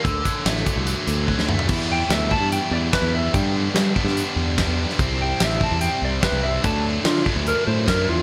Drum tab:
CC |----------------|x---------------|----------------|----------------|
HH |x-x-x-x-x-x-----|----x---x---x---|x---x---x---x---|x---x---x---x---|
SD |----oo-------o--|----o-------o---|----o--o----o--o|----oo------o---|
T2 |--------------o-|----------------|----------------|----------------|
FT |---------------o|----------------|----------------|----------------|
BD |o-o---o-----o---|o-----o-----o---|o-----o-----o---|o-----o-----o---|

CC |----------------|
HH |x---x---x---x---|
SD |----oo------o---|
T2 |----------------|
FT |----------------|
BD |o-----o-----o---|